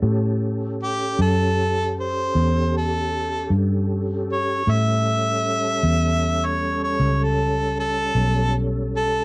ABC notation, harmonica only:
X:1
M:12/8
L:1/16
Q:3/8=52
K:Amix
V:1 name="Harmonica"
z4 G2 A4 =c4 A4 z4 ^c2 | e8- e c2 c2 A3 A4 z2 A2 |]